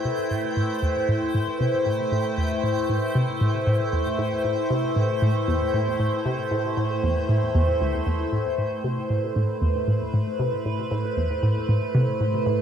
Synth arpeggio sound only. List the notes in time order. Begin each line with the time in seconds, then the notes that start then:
0.05 C3
0.31 A2
0.57 A2
0.82 E2
1.09 A2
1.34 A2
1.60 C3
1.86 A2
2.12 A2
2.38 E2
2.64 A2
2.89 A2
3.15 C3
3.41 A2
3.67 A2
3.93 E2
4.19 A2
4.45 A2
4.70 C3
4.96 A2
5.22 A2
5.48 E2
5.74 A2
6.00 A2
6.26 C3
6.51 A2
6.77 A2
7.03 E2
7.29 A2
7.55 E2
7.81 D2
8.07 E2
8.32 A2
8.58 A2
8.84 C3
9.10 A2
9.36 A2
9.62 E2
9.88 A2
10.14 A2
10.39 C3
10.66 A2
10.91 A2
11.17 E2
11.43 A2
11.69 A2
11.95 C3
12.21 A2
12.46 A2